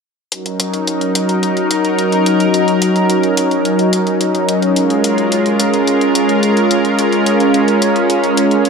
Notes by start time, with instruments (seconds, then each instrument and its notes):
0.32 analog synth pad F#3 C#4 D#4 A#4, closed hi-hat
0.46 closed hi-hat
0.60 closed hi-hat
0.74 closed hi-hat
0.87 closed hi-hat
1.01 closed hi-hat
1.15 closed hi-hat
1.29 closed hi-hat
1.43 closed hi-hat
1.57 closed hi-hat
1.71 closed hi-hat
1.85 closed hi-hat
1.99 closed hi-hat
2.12 closed hi-hat
2.26 closed hi-hat
2.40 closed hi-hat
2.54 closed hi-hat
2.68 closed hi-hat
2.82 closed hi-hat
2.96 closed hi-hat
3.10 closed hi-hat
3.23 closed hi-hat
3.37 closed hi-hat
3.51 closed hi-hat
3.65 closed hi-hat
3.79 closed hi-hat
3.93 closed hi-hat
4.07 closed hi-hat
4.21 closed hi-hat
4.35 closed hi-hat
4.49 closed hi-hat
4.62 closed hi-hat
4.76 analog synth pad G#3 F4 A#4, closed hi-hat
4.90 closed hi-hat
5.04 closed hi-hat
5.18 closed hi-hat
5.32 closed hi-hat
5.46 closed hi-hat
5.60 closed hi-hat
5.74 closed hi-hat
5.87 closed hi-hat
6.01 closed hi-hat
6.15 closed hi-hat
6.29 closed hi-hat
6.43 closed hi-hat
6.57 closed hi-hat
6.71 closed hi-hat
6.85 closed hi-hat
6.99 closed hi-hat
7.12 closed hi-hat
7.26 closed hi-hat
7.40 closed hi-hat
7.54 closed hi-hat
7.68 closed hi-hat
7.82 closed hi-hat
7.96 closed hi-hat
8.10 closed hi-hat
8.24 closed hi-hat
8.37 closed hi-hat
8.51 closed hi-hat
8.65 closed hi-hat